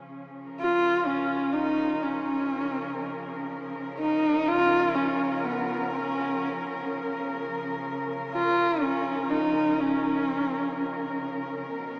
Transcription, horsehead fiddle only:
0.60 1.08 F4 loud
1.06 1.54 C#4 medium
1.53 2.04 D#4 medium
2.03 3.49 C#4 medium
3.99 4.49 D#4 medium
4.48 4.97 F4 loud
4.95 5.46 C#4 medium
5.45 5.92 B3 medium
5.93 6.85 C#4 medium
8.34 8.83 F4 medium
8.82 9.31 C#4 medium
9.30 9.82 D#4 medium
9.81 11.25 C#4 medium

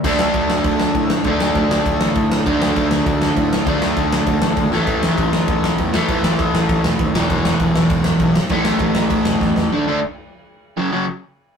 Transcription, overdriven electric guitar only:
0.04 1.24 D3 loud
0.04 1.26 A3 loud
0.04 1.27 D4 loud
1.25 2.45 D3 medium
1.25 2.47 A3 loud
1.25 2.48 D4 loud
2.46 3.65 D3 loud
2.46 3.67 A3 loud
2.46 3.67 D4 loud
3.66 4.71 D3 loud
3.66 4.73 A3 loud
3.66 4.72 D4 loud
4.72 5.92 A2 medium
4.72 5.94 E3 loud
4.72 5.93 A3 loud
5.93 7.13 A2 loud
5.93 7.16 E3 loud
5.93 7.15 A3 loud
7.14 8.34 E2 loud
7.14 8.35 B2 loud
7.14 8.35 E3 loud
8.50 9.70 A2 medium
8.50 9.71 E3 loud
8.50 9.72 A3 loud
9.72 9.84 D3 medium
9.72 9.84 A3 loud
9.72 9.84 D4 loud
9.87 9.99 D3 medium
9.87 9.99 A3 medium
9.87 9.99 D4 loud
10.77 10.89 F#2 medium
10.77 10.89 C#3 medium
10.77 10.90 F#3 medium
10.92 11.04 F#2 medium
10.92 11.05 C#3 medium
10.92 11.05 F#3 medium

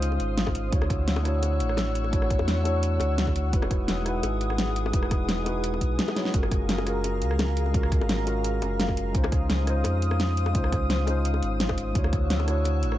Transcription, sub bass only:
0.00 0.19 C#2 medium
0.20 0.54 G#1 medium
0.55 0.71 G#1 medium
0.72 1.61 D2 loud
1.60 2.38 A1 loud
2.39 2.99 E2 loud
3.00 3.55 D2 medium
3.53 3.87 E1 medium
3.88 4.22 E1 loud
4.23 4.92 G#1 loud
4.93 5.80 E1 loud
5.81 5.99 B1 medium
6.34 7.23 F#1 loud
7.22 7.99 C#2 loud
8.01 8.61 G#1 loud
8.62 9.16 F#1 medium
9.15 9.48 C#2 medium
9.50 9.83 C#2 loud
9.85 10.54 F2 loud
10.55 11.41 C#2 loud
11.43 11.76 G#1 medium
11.78 11.94 G#1 medium
11.95 12.85 D2 loud
12.83 12.98 A1 loud

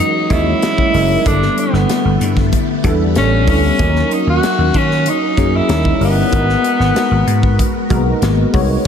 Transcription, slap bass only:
0.30 0.52 D#2 medium
0.94 1.15 F#1 medium
1.26 1.47 G1 medium
1.73 1.84 G1 medium
2.05 2.16 G1 medium
2.21 2.53 G2 medium
2.84 3.17 E2 medium
3.16 3.48 A1 medium
3.48 3.69 D2 medium
3.79 4.01 D#2 loud
4.27 4.38 D#2 medium
4.58 4.69 D#2 loud
4.74 5.07 D#3 medium
5.37 5.59 F#2 loud
5.69 5.91 D#2 loud
6.00 6.22 G1 medium
6.32 6.54 G#1 loud
6.79 6.90 G#1 medium
7.11 7.22 G#1 loud
7.27 7.59 G#2 loud
7.90 8.12 B1 medium
8.22 8.43 G#1 loud
8.54 8.75 C2 medium

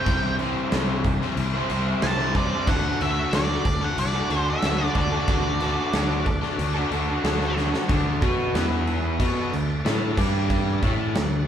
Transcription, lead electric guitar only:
0.00 0.35 G5 medium
2.03 2.33 A5 loud
2.37 2.69 D5 medium
2.69 3.02 F#5 loud
3.02 3.34 E5 medium
3.35 3.84 D5 loud
3.84 3.98 F#5 medium
3.99 4.49 D5 medium
4.50 4.94 E5 loud
4.99 7.55 D5 medium

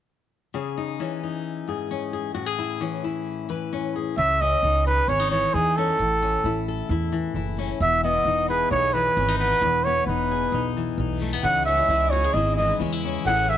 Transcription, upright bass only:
4.17 4.53 C#2 medium
4.63 4.99 C#2 medium
5.08 5.44 G#1 medium
5.54 5.90 E2 medium
5.99 6.35 A1 medium
6.44 6.80 A1 medium
6.89 7.25 E2 medium
7.34 7.70 F#1 medium
7.80 8.16 E1 medium
8.25 8.61 E1 medium
8.71 9.07 B1 medium
9.17 9.53 G#1 medium
9.61 9.98 E1 medium
10.06 10.43 E1 medium
10.52 10.88 B1 medium
10.98 11.34 B1 medium
11.43 11.79 C#2 medium
11.88 12.25 C#2 medium
12.34 12.70 G#1 medium
12.80 13.16 E2 medium
13.25 13.58 A1 medium

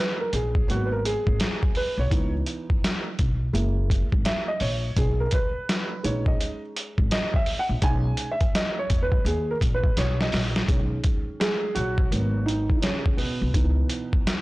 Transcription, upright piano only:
0.00 0.65 D#3 medium
0.00 0.65 G#3 soft
0.00 0.65 C#4 medium
0.00 0.21 B4 medium
0.20 0.34 A#4 medium
0.34 0.67 G#4 medium
0.68 2.07 F#3 medium
0.68 2.08 A#3 medium
0.68 2.08 B3 medium
0.68 0.87 F#4 medium
0.86 0.91 B4 medium
0.92 1.05 A#4 medium
1.05 1.78 G#4 loud
1.77 1.99 B4 medium
1.99 2.32 C#5 medium
2.10 3.14 E3 medium
2.10 3.14 B3 medium
2.10 3.15 D#4 medium
3.53 4.05 G#3 medium
3.53 4.05 A#3 medium
3.53 4.05 E4 medium
4.26 4.49 E5 loud
4.48 4.62 D#5 medium
4.61 4.98 C#5 medium
4.98 5.21 G#4 medium
5.20 5.34 A#4 medium
5.34 6.07 B4 medium
6.03 7.80 G#3 medium
6.03 7.81 C#4 soft
6.03 7.81 D#4 medium
6.03 6.28 C#5 medium
6.28 6.60 D#5 medium
7.12 7.36 D#5 loud
7.36 7.60 E5 medium
7.59 7.65 F#5 loud
7.82 8.33 G#3 medium
7.82 8.34 C#4 medium
7.82 8.34 D#4 medium
7.82 8.28 G#5 loud
8.32 8.56 E5 medium
8.55 8.79 D#5 loud
8.79 9.01 C#5 loud
9.03 9.27 B4 medium
9.26 9.51 G#4 medium
9.51 9.56 A#4 medium
9.74 9.98 B4 medium
9.98 10.22 C#5 loud
10.22 10.66 D#5 medium
10.68 12.07 D#3 medium
10.68 11.40 G#3 soft
10.68 12.08 C#4 medium
11.40 11.74 G#3 medium
11.40 11.77 G#4 loud
11.75 12.09 F#3 medium
11.75 12.43 F#4 loud
12.11 12.62 F#3 medium
12.11 12.63 A#3 medium
12.11 12.63 B3 medium
12.46 12.76 D#3 medium
12.46 12.75 D#4 medium
12.76 12.82 D#4 medium
12.82 13.17 C#3 medium
12.82 13.19 C#4 medium
13.17 14.22 B2 medium
13.17 13.53 B3 medium
13.54 14.41 E3 medium
13.54 14.41 B3 soft
13.54 14.41 D#4 medium

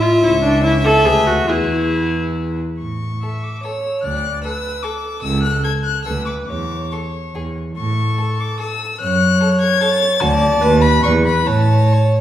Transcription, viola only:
0.02 0.23 F4 loud
0.23 0.31 E4 loud
0.43 0.63 D4 medium
0.64 0.72 E4 loud
0.85 1.07 A4 loud
1.05 1.28 G#4 loud
1.27 1.51 F#4 loud
1.50 2.59 E4 medium
3.23 3.61 E5 medium
3.64 4.06 C#5 medium
4.04 4.43 D5 medium
4.44 4.85 B4 medium
4.84 6.08 A4 medium
6.06 6.50 B4 medium
6.49 7.56 C#5 medium
7.77 8.97 A4 medium
9.01 10.19 C#5 medium
10.21 10.62 D5 loud
10.61 11.02 B4 loud
11.03 11.48 B4 loud
11.46 12.21 C#5 medium

